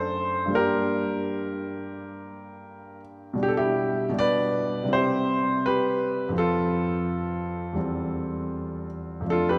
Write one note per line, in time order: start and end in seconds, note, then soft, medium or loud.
0.00 0.47 F#2 soft
0.00 0.48 A3 soft
0.00 0.49 D4 soft
0.00 0.52 A4 medium
0.00 0.56 C5 medium
0.46 3.34 G2 medium
0.46 3.34 G3 soft
0.51 3.37 A#3 soft
0.51 3.36 D4 soft
0.55 3.39 G4 medium
0.55 3.00 A#4 medium
3.33 4.08 B2 medium
3.33 4.10 G3 soft
3.38 4.12 D4 soft
3.43 3.50 G4 medium
3.48 3.56 A4 medium
3.57 4.15 E4 medium
3.57 4.10 G4 medium
4.09 4.86 B2 medium
4.09 4.84 G3 soft
4.14 4.88 D4 soft
4.19 4.89 B4 medium
4.19 4.93 D5 loud
4.83 6.30 C3 medium
4.83 6.31 G3 soft
4.88 6.31 C4 soft
4.88 6.33 E4 soft
4.93 5.62 G4 medium
4.93 5.65 C5 medium
5.66 6.36 G4 medium
5.66 6.28 B4 medium
6.29 7.74 F2 medium
6.29 7.75 F3 soft
6.29 7.75 C4 soft
6.38 9.26 F4 medium
6.38 8.86 A4 loud
7.73 9.21 E2 medium
7.73 9.22 G3 soft
7.77 9.23 C4 soft
9.21 9.59 F2 medium
9.21 9.59 F3 soft
9.25 9.59 A3 soft
9.25 9.59 D4 soft
9.30 9.48 F4 medium
9.30 9.49 A4 loud
9.49 9.59 G4 medium
9.49 9.59 B4 medium